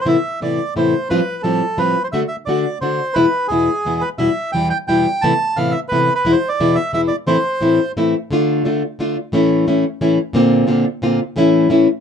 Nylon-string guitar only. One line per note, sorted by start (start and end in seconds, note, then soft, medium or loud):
0.05 0.15 A2 medium
0.05 0.16 C3 medium
0.05 0.16 E3 medium
0.05 0.16 A3 soft
0.05 0.16 B3 medium
0.05 0.16 E4 medium
0.41 0.58 A2 soft
0.41 0.59 C3 soft
0.41 0.59 E3 soft
0.41 0.59 A3 soft
0.41 0.59 B3 soft
0.41 0.59 E4 soft
0.76 0.93 A2 soft
0.76 0.93 C3 soft
0.76 0.93 E3 soft
0.76 0.93 A3 soft
0.76 0.94 B3 soft
0.76 0.94 E4 soft
1.10 1.19 A2 medium
1.10 1.20 F3 medium
1.10 1.20 G3 medium
1.10 1.20 C4 medium
1.10 1.20 F4 medium
1.44 1.61 A2 soft
1.44 1.61 F3 soft
1.44 1.62 G3 soft
1.44 1.62 C4 medium
1.44 1.62 F4 soft
1.77 1.95 A2 soft
1.77 1.96 F3 soft
1.77 1.96 G3 medium
1.77 1.96 C4 soft
1.77 1.96 F4 medium
2.13 2.22 D3 medium
2.13 2.23 A3 medium
2.13 2.23 D4 medium
2.13 2.23 F#4 medium
2.47 2.64 D3 soft
2.47 2.65 A3 soft
2.47 2.65 D4 soft
2.47 2.65 F#4 medium
2.82 2.99 D3 soft
2.82 2.99 A3 soft
2.82 2.99 D4 soft
2.82 3.00 F#4 medium
3.15 3.25 E2 medium
3.15 3.25 B2 medium
3.15 3.25 E3 medium
3.15 3.25 G#3 medium
3.15 3.25 B3 medium
3.15 3.25 E4 medium
3.50 3.68 E2 soft
3.50 3.68 B2 soft
3.50 3.68 E3 soft
3.50 3.68 G#3 soft
3.50 3.68 B3 medium
3.50 3.68 E4 soft
3.85 4.02 E2 soft
3.85 4.02 B2 soft
3.85 4.03 E3 soft
3.85 4.03 G#3 soft
3.85 4.03 B3 soft
3.85 4.03 E4 soft
4.18 4.28 E2 medium
4.18 4.28 B2 medium
4.18 4.28 E3 medium
4.18 4.28 G3 medium
4.18 4.29 B3 medium
4.18 4.29 E4 medium
4.54 4.71 E2 soft
4.54 4.71 B2 soft
4.54 4.71 E3 soft
4.54 4.71 G3 soft
4.54 4.72 B3 soft
4.54 4.72 E4 soft
4.88 5.05 E2 soft
4.88 5.06 B2 soft
4.88 5.06 E3 soft
4.88 5.06 G3 soft
4.88 5.06 B3 soft
4.88 5.06 E4 soft
5.23 5.32 A2 medium
5.23 5.32 C3 medium
5.23 5.32 E3 medium
5.23 5.32 A3 medium
5.23 5.32 B3 medium
5.23 5.33 E4 medium
5.57 5.74 A2 soft
5.57 5.74 C3 medium
5.57 5.74 E3 medium
5.57 5.74 A3 medium
5.57 5.74 B3 medium
5.57 5.75 E4 medium
5.91 6.08 A2 soft
5.91 6.09 C3 soft
5.91 6.09 E3 soft
5.91 6.09 A3 soft
5.91 6.09 B3 medium
5.91 6.09 E4 medium
6.25 6.34 E2 medium
6.25 6.34 B2 medium
6.25 6.34 E3 medium
6.25 6.35 G#3 medium
6.25 6.35 B3 medium
6.25 6.35 E4 medium
6.60 6.77 E2 soft
6.60 6.77 B2 medium
6.60 6.77 E3 soft
6.60 6.77 G#3 medium
6.60 6.77 B3 medium
6.60 6.77 E4 medium
6.93 7.10 E2 medium
6.93 7.10 B2 medium
6.93 7.10 E3 soft
6.93 7.10 G#3 medium
6.93 7.11 B3 soft
6.93 7.11 E4 medium
7.27 7.36 A2 medium
7.27 7.36 E3 medium
7.27 7.37 A3 medium
7.27 7.37 C4 medium
7.27 7.37 E4 medium
7.61 7.78 A2 medium
7.61 7.79 E3 soft
7.61 7.79 A3 medium
7.61 7.79 C4 medium
7.61 7.79 E4 medium
7.97 8.14 A2 soft
7.97 8.14 E3 medium
7.97 8.14 A3 medium
7.97 8.14 C4 medium
7.97 8.14 E4 medium
8.31 8.64 D3 medium
8.31 8.64 A3 medium
8.31 8.65 D4 medium
8.31 8.65 F4 medium
8.65 8.82 D3 medium
8.65 8.82 A3 medium
8.65 8.82 D4 medium
8.65 8.82 F4 medium
8.99 9.16 D3 soft
8.99 9.16 A3 medium
8.99 9.16 D4 medium
8.99 9.17 F4 medium
9.32 9.66 A2 medium
9.32 9.66 E3 medium
9.32 9.66 A3 medium
9.32 9.67 C#4 medium
9.32 9.67 E4 medium
9.67 9.84 A2 medium
9.67 9.84 E3 medium
9.67 9.84 A3 medium
9.67 9.84 C#4 medium
9.67 9.84 E4 medium
10.01 10.18 A2 medium
10.01 10.18 E3 medium
10.01 10.18 A3 medium
10.01 10.18 C#4 medium
10.01 10.18 E4 medium
10.33 10.66 A#2 medium
10.33 10.66 D3 medium
10.33 10.67 A#3 medium
10.33 10.67 C4 medium
10.33 10.67 F4 medium
10.67 10.84 A#2 medium
10.67 10.85 D3 medium
10.67 10.85 A#3 medium
10.67 10.85 C4 medium
10.67 10.85 F4 medium
11.02 11.19 A#2 medium
11.02 11.19 D3 medium
11.02 11.19 A#3 medium
11.02 11.19 C4 medium
11.02 11.20 F4 medium
11.36 11.68 A2 medium
11.36 11.69 E3 medium
11.36 11.69 A3 medium
11.36 11.69 C#4 medium
11.36 11.70 E4 medium
11.69 11.86 A2 medium
11.69 11.87 E3 medium
11.69 11.87 A3 medium
11.69 11.87 C#4 medium
11.69 11.87 E4 medium